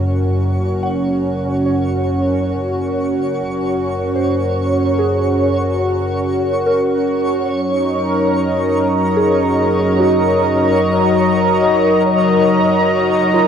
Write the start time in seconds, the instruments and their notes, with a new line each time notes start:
Already playing: double bass section F#1, analog synth pad C#4 F#4 A#4, synth texture C#5, synth bell G#5
0.83 synth bell F#5
1.66 synth bell C#5
4.16 synth bell C5
4.99 synth bell G#4
6.66 synth bell A#4
7.50 double bass section F#1, analog synth pad F#3
7.65 analog synth pad D#4
7.91 analog synth pad A#4
8.04 analog synth pad A#5
8.30 analog synth pad D#5
9.17 synth bell G#4
10.00 synth bell F#4
13.34 synth bell F4